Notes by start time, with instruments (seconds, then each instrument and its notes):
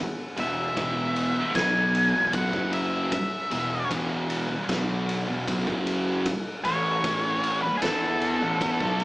0.37 picked electric bass E1, distorted electric guitar E2 B2, lead electric guitar E5, ride
0.76 picked electric bass E1, distorted electric guitar E2 B2 E3, kick, ride
1.16 ride
1.35 muted picked electric bass stroke, muted distorted electric guitar stroke
1.55 picked electric bass B1, distorted electric guitar B2 F#3 B3, lead electric guitar G#5, kick, snare, ride
1.95 ride
2.14 picked electric bass E1, distorted electric guitar E2 B2
2.33 picked electric bass B1, distorted electric guitar B2 F#3, lead electric guitar F#5, kick, ride
2.53 picked electric bass F#1, distorted electric guitar F#2 C#3 F#3, kick
2.73 lead electric guitar E5, ride
3.12 lead electric guitar E5, kick, ride
3.51 picked electric bass E1, distorted electric guitar E2 B2, ride
3.90 picked electric bass E1, distorted electric guitar E2 B2 E3, kick, ride
4.30 ride
4.49 muted distorted electric guitar stroke, muted picked electric bass stroke
4.68 picked electric bass B1, distorted electric guitar B2 F#3 B3, kick, snare, ride
5.09 ride
5.28 picked electric bass E1, distorted electric guitar E2 B2
5.47 picked electric bass B1, distorted electric guitar B2 F#3, kick, ride
5.67 picked electric bass F#1, distorted electric guitar F#2 C#3 F#3, kick
5.87 ride
6.26 kick, ride
6.65 picked electric bass A1, distorted electric guitar A2 E3, lead electric guitar C#5, ride
7.04 picked electric bass A1, distorted electric guitar A2 E3 A3, kick, ride
7.44 ride
7.62 lead electric guitar B4, muted picked electric bass stroke, muted distorted electric guitar stroke
7.77 lead electric guitar G#4
7.81 picked electric bass E2, distorted electric guitar E3 B3 E4, lead electric guitar A4, kick, snare, ride
8.22 ride
8.41 picked electric bass A1, distorted electric guitar A2 E3
8.61 picked electric bass E2, distorted electric guitar E3 B3, kick, ride
8.79 picked electric bass B1, distorted electric guitar B2 F#3 B3, kick
9.00 ride